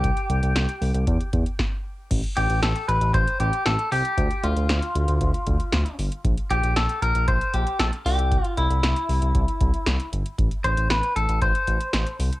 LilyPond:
<<
  \new Staff \with { instrumentName = "Clean electric guitar" } { \time 4/4 \key c \major \tempo 4 = 116 g'2~ g'8 r4. | r8 g'8 a'8 b'8 c''8 g'8 a'8 g'8~ | g'8 f'2. r8 | r8 g'8 a'8 bes'8 c''8 g'8 a'8 g'8~ |
g'8 e'2. r8 | r8 c''8 b'8 a'8 c''4. r8 | }
  \new Staff \with { instrumentName = "Analog synth bass" } { \clef bass \time 4/4 \key c \major c,16 r16 c,16 c,16 c,16 r16 c,16 c,16 e,16 r16 e,16 r4 r16 | a,,16 r16 a,,16 a,,16 a,,16 r16 a,,16 a,,16 a,,16 r16 a,,16 r16 a,,16 r16 c,16 r16 | d,16 r16 d,16 d,16 d,16 r16 d,16 d,16 d,16 r16 d,16 r16 d,16 r16 g,,16 r16 | bes,,16 r16 bes,,16 bes,,16 bes,,16 r16 bes,,16 bes,,16 bes,,16 r16 bes,,16 r16 bes,,16 r16 c,8~ |
c,16 r16 c,16 c,16 c,16 r16 c,16 c,16 c,16 r16 c,16 r16 c,16 r16 g,,16 r16 | a,,16 r16 a,,16 a,,16 a,,16 r16 a,,16 a,,16 a,,16 r16 a,,16 r16 a,,16 r16 c,16 r16 | }
  \new DrumStaff \with { instrumentName = "Drums" } \drummode { \time 4/4 <hh bd>16 hh16 hh16 hh16 <hh sn>16 hh16 hho16 hh16 <hh bd>16 hh16 <hh bd>16 hh16 <bd sn>4 | <cymc hh bd>16 hh16 hh16 hh16 <hh sn>16 hh16 hh16 hh16 <hh bd>16 hh16 hh16 hh16 <hh sn>16 hh16 hho16 hh16 | <hh bd>16 hh16 hh16 hh16 <hh sn>16 hh16 hh16 hh16 <hh bd>16 hh16 <hh bd>16 hh16 <hh sn>16 hh16 hho16 hh16 | <hh bd>16 hh16 hh16 hh16 <hh sn>16 hh16 hh16 hh16 <hh bd>16 hh16 hh16 hh16 <hh sn>16 hh16 hho16 hh16 |
<hh bd>16 hh16 hh16 hh16 <hh sn>16 hh16 hho16 hh16 <hh bd>16 hh16 <hh bd>16 hh16 <hh sn>16 hh16 hh16 hh16 | <hh bd>16 hh16 hh16 hh16 <hh sn>16 hh16 hh16 hh16 <hh bd>16 hh16 hh16 hh16 <hh sn>16 hh16 hho16 hh16 | }
>>